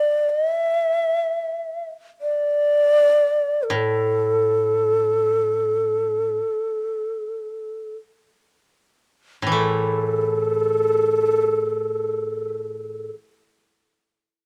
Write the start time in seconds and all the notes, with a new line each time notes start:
Already playing: D5
0.30 D#5
0.50 E5
2.21 D5
3.63 A#4
3.70 A2 A#4
3.76 A4
9.42 A2
9.47 E3
9.52 A3 A4